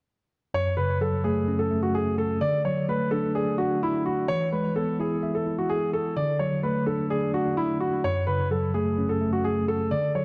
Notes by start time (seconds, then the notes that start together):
0.54 F#2 C#5
0.77 C#3 B4
1.01 F#3 A4
1.24 A3 G#4
1.48 C#4
1.59 A4
1.71 A3
1.83 F#4
1.95 G#4
2.18 A4
2.41 D3 D5
2.65 F#3 C#5
2.88 A3 B4
3.11 D4 A4
3.35 G#4 D5
3.58 D4 F#4
3.83 E4
4.06 F#4
4.28 E3 C#5
4.52 G#3 B4
4.76 B3 A4
5.00 E4 G#4
5.23 E5
5.35 A4
5.46 E4
5.58 F#4
5.70 G#4
5.93 A4
6.16 D3 D5
6.39 F#3 C#5
6.63 A3 B4
6.86 D4 A4
7.10 G#4 D5
7.33 D4 F#4
7.57 E4
7.80 F#4
8.04 F#2 C#5
8.27 C#3 B4
8.51 F#3 A4
8.74 A3 G#4
8.98 C#4
9.09 A4
9.21 A3
9.33 F#4
9.44 G#4
9.68 A4
9.91 D3 D5
10.15 F#3 C#5